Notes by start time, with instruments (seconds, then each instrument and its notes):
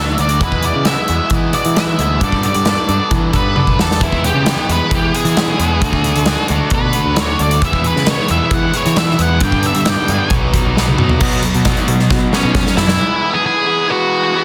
Already playing: picked electric bass D2, overdriven electric guitar D3 A3, lead electric guitar E5
0.00 overdriven electric guitar D4 F#4, clean electric guitar A4
0.18 picked electric bass D2, overdriven electric guitar D4 F#4, lead electric guitar D5, closed hi-hat
0.22 overdriven electric guitar A3
0.29 closed hi-hat
0.39 clean electric guitar E2 F#4, picked electric bass E2, overdriven electric guitar E3 G#3, lead electric guitar B4, kick, closed hi-hat
0.44 overdriven electric guitar B3 E4
0.52 kick
0.63 clean electric guitar G#3 B3 E4 F#4, lead electric guitar D5, closed hi-hat
0.75 picked electric bass C#3
0.85 overdriven electric guitar E3 G#3, clean electric guitar F#4, lead electric guitar E5, snare, closed hi-hat
0.89 overdriven electric guitar B3 E4
1.08 picked electric bass E2, overdriven electric guitar G#3 B3 E4, clean electric guitar F#4, closed hi-hat
1.30 overdriven electric guitar E3 G#3 B3, picked electric bass E3, kick, closed hi-hat
1.34 overdriven electric guitar E4
1.53 clean electric guitar G#3 B3 E4 F#4, lead electric guitar D5, closed hi-hat
1.65 picked electric bass E3, closed hi-hat
1.75 clean electric guitar E2 F#4, overdriven electric guitar E3 G#3 B3 E4, lead electric guitar E5, snare, closed hi-hat
1.99 picked electric bass D2, overdriven electric guitar G#3 B3 E4, closed hi-hat
2.21 overdriven electric guitar G2 D3 G3 B3 D4, picked electric bass G2, clean electric guitar A4, lead electric guitar D5, kick, closed hi-hat
2.32 kick
2.43 clean electric guitar B3 D4 A4, lead electric guitar D5, closed hi-hat
2.54 picked electric bass G2, closed hi-hat
2.65 overdriven electric guitar D3 G3 B3 D4, clean electric guitar A4, lead electric guitar D5, snare, closed hi-hat
2.87 picked electric bass G2, overdriven electric guitar B3 D4, clean electric guitar A4, closed hi-hat
2.92 overdriven electric guitar G3
3.11 overdriven electric guitar G2 D3 G3 B3 D4, picked electric bass E3, kick, closed hi-hat
3.33 picked electric bass G2, clean electric guitar B3 D4 A4, lead electric guitar B4, kick, closed hi-hat
3.55 picked electric bass F#2, overdriven electric guitar D3 G3 B3 D4, high tom
3.59 clean electric guitar A4
3.67 kick
3.78 picked electric bass E2, overdriven electric guitar G3 B3 D4, lead electric guitar A4, snare
3.91 snare
4.01 picked electric bass E2, overdriven electric guitar E3 G#3 B3 E4, lead electric guitar E4, kick, closed hi-hat
4.12 kick
4.24 distorted electric guitar G#3 B3 E4, lead electric guitar G4, closed hi-hat
4.34 picked electric bass C#3
4.46 overdriven electric guitar E3 G#3 B3 E4, snare, closed hi-hat
4.69 picked electric bass E2, distorted electric guitar E3, overdriven electric guitar G#3 B3 E4, lead electric guitar B4, closed hi-hat
4.90 overdriven electric guitar E3 G#3 B3 E4, picked electric bass E3, kick, closed hi-hat
4.95 lead electric guitar G4
5.14 distorted electric guitar G#3 B3 E4, lead electric guitar G#4, closed hi-hat
5.25 picked electric bass E3, closed hi-hat
5.35 overdriven electric guitar E3 G#3 B3 E4, snare, closed hi-hat
5.58 picked electric bass E2, overdriven electric guitar G#3 B3 E4, closed hi-hat
5.81 picked electric bass D2, overdriven electric guitar D3 A3 D4 F#4, kick, closed hi-hat
5.93 kick
6.03 distorted electric guitar A3 D4 F#4, closed hi-hat
6.16 picked electric bass D2, closed hi-hat
6.26 overdriven electric guitar D3 A3 D4 F#4, snare, closed hi-hat
6.48 picked electric bass D2, distorted electric guitar D3, overdriven electric guitar D4 F#4, closed hi-hat
6.53 overdriven electric guitar A3
6.70 picked electric bass B2, overdriven electric guitar D3 A3 F#4, kick, closed hi-hat
6.75 lead electric guitar B4
6.93 distorted electric guitar A3 D4 F#4, closed hi-hat
7.06 picked electric bass D2
7.15 overdriven electric guitar D3 A3 D4 F#4, snare, closed hi-hat
7.20 lead electric guitar C#5
7.38 picked electric bass D2, overdriven electric guitar A3 D4 F#4, closed hi-hat
7.42 lead electric guitar D5
7.51 closed hi-hat
7.61 picked electric bass E2, overdriven electric guitar E3 G#3 B3 E4, lead electric guitar E5, kick, closed hi-hat
7.73 kick
7.84 distorted electric guitar G#3 B3 E4, lead electric guitar B4, closed hi-hat
7.96 picked electric bass C#3, snare
8.06 overdriven electric guitar E3 G#3 B3 E4, snare, closed hi-hat
8.10 lead electric guitar C#5
8.28 picked electric bass E2, distorted electric guitar E3, overdriven electric guitar G#3 B3 E4, lead electric guitar E5, closed hi-hat
8.51 picked electric bass E3, overdriven electric guitar E3 G#3 B3 E4, lead electric guitar F#5, kick, closed hi-hat
8.74 distorted electric guitar G#3 B3 E4, lead electric guitar C#5, closed hi-hat
8.86 picked electric bass E3, closed hi-hat
8.96 overdriven electric guitar E3 G#3 B3 E4, lead electric guitar E5, snare, closed hi-hat
9.19 picked electric bass E2, overdriven electric guitar B3 E4, lead electric guitar F#5, closed hi-hat
9.23 overdriven electric guitar G#3
9.40 picked electric bass G2, overdriven electric guitar G2 D3 G3, lead electric guitar G5, kick, closed hi-hat
9.45 overdriven electric guitar B3 D4
9.52 kick
9.63 distorted electric guitar G3 B3 D4, lead electric guitar E5, closed hi-hat
9.75 picked electric bass G2, closed hi-hat
9.85 overdriven electric guitar D3 G3 B3, lead electric guitar G5, snare, closed hi-hat
9.90 overdriven electric guitar D4
10.07 picked electric bass G2, distorted electric guitar G2 D3, overdriven electric guitar G3 B3 D4, closed hi-hat
10.30 picked electric bass B1, overdriven electric guitar B2 F#3 B3 D#4, kick, closed hi-hat
10.53 distorted electric guitar F#3 B3 D#4, kick, closed hi-hat
10.65 picked electric bass B1
10.75 overdriven electric guitar B2 F#3 B3 D#4, snare
10.88 high tom
10.98 picked electric bass B2, overdriven electric guitar F#3 B3 D#4, mid tom
11.09 floor tom
11.20 overdriven electric guitar B2 F#3 B3, picked electric bass B2, distorted electric guitar D#4, kick, crash
11.32 closed hi-hat
11.43 overdriven electric guitar B2 F#3, closed hi-hat
11.54 picked electric bass B2, closed hi-hat
11.65 overdriven electric guitar B2 F#3 B3, kick, snare, closed hi-hat
11.77 closed hi-hat
11.88 picked electric bass B2, overdriven electric guitar B2 F#3, closed hi-hat
12.00 snare
12.11 picked electric bass B2, overdriven electric guitar B2 F#3, kick, snare
12.33 overdriven electric guitar B2 F#3 B3, lead electric guitar C#4 C#5, snare
12.44 picked electric bass B2
12.55 overdriven electric guitar B2 F#3, kick, snare
12.67 snare
12.77 picked electric bass F#2, overdriven electric guitar B2 F#3, distorted electric guitar B3 D#4, lead electric guitar E4 E5, snare
12.88 snare
12.99 overdriven electric guitar E3 G#3 B3 E4
13.21 overdriven electric guitar G#3 B3 E4
13.33 lead electric guitar G#4 G#5
13.42 overdriven electric guitar E3 G#3 B3 E4, lead electric guitar G#4
13.46 lead electric guitar G#5
13.65 overdriven electric guitar G#3 B3 E4
13.87 overdriven electric guitar E3 G#3 B3 E4, lead electric guitar F#4 F#5
14.32 overdriven electric guitar E3 G#3 B3 E4